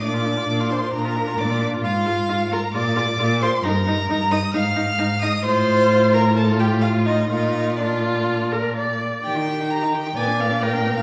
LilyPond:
<<
  \new Staff \with { instrumentName = "Violin" } { \time 4/4 \key bes \major \tempo 4 = 132 d'''4. c'''8 bes''4 d'''8 r8 | \key ees \major f''4. bes''8 d'''4. c'''8 | bes''4. ees'''8 f'''4. ees'''8 | c'''4. bes''8 a''8 g''8 f''8 ees''8 |
ees''4 d''2 r4 | g''4 bes''8 g''8 aes''8 f''8 g''8. f''16 | }
  \new Staff \with { instrumentName = "Violin" } { \time 4/4 \key bes \major d''4. c''8 bes'4 d''8 r8 | \key ees \major f'4. bes'8 d''4. c''8 | bes'4. ees''8 f''4. ees''8 | c''4. bes'8 a'8 g'8 f'8 ees'8 |
ees'4 d'2 r4 | g'16 ees'16 g'16 ees'16 g'16 ees'16 g'16 ees'16 ces'16 d'16 ces'16 d'16 ces'16 d'16 ces'16 d'16 | }
  \new Staff \with { instrumentName = "Viola" } { \time 4/4 \key bes \major d'16 f'16 d'16 f'16 d'16 f'16 d'16 f'16 d'16 f'16 d'16 f'16 d'16 f'16 d'16 f'16 | \key ees \major f'8 f'8 f'8 f'8 f'8 f'8 f'8 f'8 | ees'8 ees'8 ees'8 ees'8 ees'8 ees'8 ees'8 ees'8 | f'2 f'4 f'4 |
f'4 f'4. bes'8 d''4 | r2 d''4 bes'4 | }
  \new Staff \with { instrumentName = "Cello" } { \clef bass \time 4/4 \key bes \major bes,4 bes,4 bes,4 bes,4 | \key ees \major aes,4 aes,4 bes,4 bes,4 | g,4 g,4 aes,4 aes,4 | a,1 |
bes,2.~ bes,8 r8 | ees2 bes,2 | }
>>